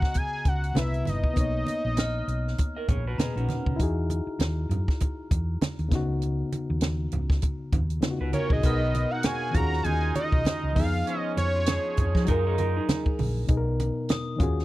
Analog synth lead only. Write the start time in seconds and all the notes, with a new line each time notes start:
Already playing: F#5
0.17 G#5
0.48 F#5
0.69 F#5
0.77 E5
1.09 D#5
8.34 C#5
8.53 D#5
9.11 F#5
9.24 G#5
9.54 A#5
9.83 G#5
10.16 D#5
10.76 F5
11.20 D#5
11.38 C#5